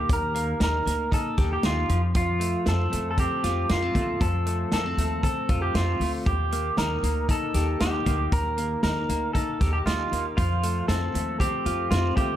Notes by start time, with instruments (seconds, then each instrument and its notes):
Already playing: clean electric guitar A#3 D#4 G4
0.09 upright bass D#2, clean electric guitar A#4, kick, closed hi-hat
0.35 clean electric guitar A#3, closed hi-hat
0.60 upright bass D#2, clean electric guitar D#4 A#4, snare, closed hi-hat
0.86 upright bass D2, clean electric guitar A#3, closed hi-hat
1.11 clean electric guitar D#4 A4, kick, closed hi-hat
1.38 upright bass D#2, clean electric guitar G4, kick, snare, closed hi-hat
1.53 clean electric guitar G4
1.63 upright bass D#2, clean electric guitar D#4 F4, snare, closed hi-hat
1.89 upright bass F2, clean electric guitar F3, closed hi-hat
2.15 clean electric guitar F3 F4, kick, closed hi-hat
2.40 clean electric guitar A3, closed hi-hat
2.66 upright bass F2, clean electric guitar C4 A4, snare, closed hi-hat
2.92 upright bass F2, clean electric guitar A3, closed hi-hat
3.11 clean electric guitar A4
3.18 clean electric guitar C4 G4, kick, closed hi-hat
3.44 upright bass F2, clean electric guitar F4, snare, closed hi-hat
3.69 upright bass F2, clean electric guitar A#3 F4, snare, closed hi-hat
3.82 clean electric guitar C4
3.95 upright bass D#2, clean electric guitar A3, kick, closed hi-hat
4.20 upright bass F2, clean electric guitar F3 A4, kick, closed hi-hat
4.46 clean electric guitar A3, closed hi-hat
4.72 upright bass F2, clean electric guitar A#3 A4, snare, closed hi-hat
4.86 clean electric guitar C4
4.97 upright bass D#2, clean electric guitar A3, closed hi-hat
5.23 clean electric guitar C4 A4, kick, closed hi-hat
5.49 upright bass F2, clean electric guitar F4, kick, closed hi-hat
5.62 clean electric guitar G4
5.74 upright bass F2, clean electric guitar C4 F4, snare, closed hi-hat
6.00 upright bass D2, clean electric guitar A3, open hi-hat
6.26 upright bass D#2, clean electric guitar G4, kick, closed hi-hat
6.52 clean electric guitar A#3, closed hi-hat
6.77 upright bass D#2, clean electric guitar D#4 A#4, snare, closed hi-hat
7.03 upright bass D2, clean electric guitar A#3, closed hi-hat
7.29 clean electric guitar D#4 A4, kick, closed hi-hat
7.54 upright bass D#2, clean electric guitar G4, snare, closed hi-hat
7.80 upright bass D#2, clean electric guitar D#4 G4, snare, closed hi-hat
8.06 upright bass D2, clean electric guitar A#3, kick, closed hi-hat
8.32 upright bass D#2, clean electric guitar A#4, kick, closed hi-hat
8.58 clean electric guitar A#3, closed hi-hat
8.83 upright bass D#2, clean electric guitar D#4 A#4, snare, closed hi-hat
9.09 upright bass D2, clean electric guitar A#3, closed hi-hat
9.33 clean electric guitar D#4 A4, kick, closed hi-hat
9.61 upright bass D#2, clean electric guitar G4, kick, snare, closed hi-hat
9.73 clean electric guitar G4
9.86 upright bass D#2, clean electric guitar D#4 F4, snare, closed hi-hat
10.12 upright bass D#2, clean electric guitar A#3, closed hi-hat
10.37 upright bass F2, clean electric guitar F3 F4, kick, closed hi-hat
10.63 clean electric guitar A3, closed hi-hat
10.88 upright bass F2, clean electric guitar C4 A4, snare, closed hi-hat
11.14 upright bass D#2, clean electric guitar A3, closed hi-hat
11.40 clean electric guitar C4 G4, kick, closed hi-hat
11.65 upright bass F2, clean electric guitar F4, closed hi-hat
11.91 upright bass F2, clean electric guitar C4 F4, snare, closed hi-hat
12.17 upright bass D#2, clean electric guitar A3 G4, kick, closed hi-hat